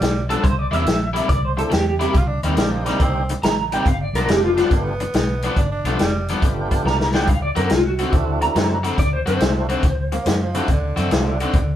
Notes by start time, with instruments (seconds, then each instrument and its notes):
Already playing: tenor saxophone G3
0.01 fingered electric bass B1, muted overdriven electric guitar stroke, snare, closed hi-hat
0.30 overdriven electric guitar G2 F3 B3 D4, clean electric guitar A4, closed hi-hat
0.43 fingered electric bass C2, clean electric guitar C5, muted overdriven electric guitar stroke, kick, closed hi-hat
0.59 clean electric guitar D5
0.71 fingered electric bass E2, overdriven electric guitar C3 G3 A#3 E4, clean electric guitar E5, closed hi-hat
0.85 fingered electric bass A#1, muted overdriven electric guitar stroke, snare, closed hi-hat
1.13 overdriven electric guitar C3 G3 A#3 E4, closed hi-hat
1.28 fingered electric bass C2, clean electric guitar D5, muted overdriven electric guitar stroke, kick, closed hi-hat
1.45 clean electric guitar C5
1.57 tonewheel organ A#3 C4 D4 E4 G4, clean electric guitar A4, muted overdriven electric guitar stroke, closed hi-hat
1.70 fingered electric bass E2, clean electric guitar G4, muted overdriven electric guitar stroke, snare, closed hi-hat
2.00 overdriven electric guitar C3 G3 A#3 E4, closed hi-hat
2.13 fingered electric bass C2, tenor saxophone F4, muted overdriven electric guitar stroke, kick, closed hi-hat
2.27 tenor saxophone D4
2.43 fingered electric bass D#2, overdriven electric guitar C3 G3 A#3 D#4, tenor saxophone C4, closed hi-hat
2.56 fingered electric bass A#1, tenor saxophone G3, tonewheel organ A#3 C4 D4 D#4 G4, muted overdriven electric guitar stroke, snare, closed hi-hat
2.71 tenor saxophone A#3
2.85 overdriven electric guitar C3 G3 A#3 D#4, tenor saxophone G3, snare, closed hi-hat
3.00 fingered electric bass C2, tenor saxophone C4, muted overdriven electric guitar stroke, kick, closed hi-hat
3.29 muted overdriven electric guitar stroke, closed hi-hat
3.43 fingered electric bass A1, clean electric guitar A#5, muted overdriven electric guitar stroke, snare, closed hi-hat
3.72 overdriven electric guitar C3 G3 A#3 D#4, clean electric guitar G5, closed hi-hat
3.86 fingered electric bass G1, clean electric guitar F5, muted overdriven electric guitar stroke, kick, closed hi-hat
4.01 clean electric guitar D5
4.13 fingered electric bass B1, overdriven electric guitar G2 F3 B3 D4, clean electric guitar A#4, closed hi-hat
4.28 fingered electric bass F1, tonewheel organ A3 B3 D4 F4 G4, clean electric guitar G4, muted overdriven electric guitar stroke, snare, closed hi-hat
4.44 clean electric guitar F4
4.57 overdriven electric guitar G2 F3 B3 D4, snare, closed hi-hat
4.71 fingered electric bass G1, tenor saxophone B3, muted overdriven electric guitar stroke, kick, closed hi-hat
5.00 muted overdriven electric guitar stroke, closed hi-hat
5.14 fingered electric bass B1, muted overdriven electric guitar stroke, snare, closed hi-hat
5.42 overdriven electric guitar G2 F3 B3 D4, closed hi-hat
5.56 fingered electric bass G1, tenor saxophone D4, muted overdriven electric guitar stroke, kick, closed hi-hat
5.71 tenor saxophone D4
5.84 fingered electric bass B1, overdriven electric guitar G2 F3 B3 D4, tenor saxophone A3, closed hi-hat
5.99 fingered electric bass F1, tenor saxophone G3, muted overdriven electric guitar stroke, snare, closed hi-hat
6.28 overdriven electric guitar G2 F3 B3 D4, closed hi-hat
6.42 fingered electric bass G1, tonewheel organ A3 B3 D4 F4 G4, muted overdriven electric guitar stroke, kick, closed hi-hat
6.71 muted overdriven electric guitar stroke, kick, closed hi-hat
6.84 fingered electric bass C2, clean electric guitar A#5, muted overdriven electric guitar stroke, snare
7.00 snare
7.14 overdriven electric guitar G2 F3 B3 D4, clean electric guitar G5, snare
7.27 fingered electric bass D2, clean electric guitar F5, muted overdriven electric guitar stroke, kick, closed hi-hat
7.42 clean electric guitar D5
7.56 fingered electric bass F#2, overdriven electric guitar D3 A3 C4 F#4, clean electric guitar A#4, closed hi-hat
7.70 fingered electric bass C2, clean electric guitar F4, muted overdriven electric guitar stroke, snare, closed hi-hat
7.85 clean electric guitar F#4
7.99 overdriven electric guitar D3 A3 C4 F#4, closed hi-hat
8.12 fingered electric bass D2, tonewheel organ A3 C4 D4 E4 F#4, muted overdriven electric guitar stroke, kick, closed hi-hat
8.42 clean electric guitar A#5, muted overdriven electric guitar stroke, closed hi-hat
8.55 fingered electric bass F#2, muted overdriven electric guitar stroke, snare, closed hi-hat
8.84 overdriven electric guitar D3 A3 C4 F#4, closed hi-hat
8.98 fingered electric bass D2, clean electric guitar D5, muted overdriven electric guitar stroke, kick, closed hi-hat
9.13 clean electric guitar C5
9.26 fingered electric bass F#2, overdriven electric guitar D3 A3 C4 F#4, clean electric guitar C5, closed hi-hat
9.40 fingered electric bass C2, tonewheel organ A3 C4 D4 E4 F#4, muted overdriven electric guitar stroke, snare, closed hi-hat
9.69 overdriven electric guitar D3 A3 C4 F#4, closed hi-hat
9.83 fingered electric bass D2, muted overdriven electric guitar stroke, kick, closed hi-hat
10.12 tenor saxophone A#3, muted overdriven electric guitar stroke, closed hi-hat
10.26 fingered electric bass F#2, muted overdriven electric guitar stroke, snare, closed hi-hat
10.42 tenor saxophone F3
10.54 overdriven electric guitar D3 A3 C4 F#4, tonewheel organ A3 C4 D4 E4 F#4, closed hi-hat
10.68 fingered electric bass D2, tenor saxophone D3, muted overdriven electric guitar stroke, kick, closed hi-hat
10.97 fingered electric bass F#2, overdriven electric guitar D3 A3 C4 F#4, closed hi-hat
11.11 fingered electric bass C2, tenor saxophone F3, tonewheel organ A3 C4 D4 E4 F#4, muted overdriven electric guitar stroke, snare, closed hi-hat
11.26 tenor saxophone D3
11.40 overdriven electric guitar D3 A3 C4 F#4, closed hi-hat
11.54 fingered electric bass D2, muted overdriven electric guitar stroke, kick, closed hi-hat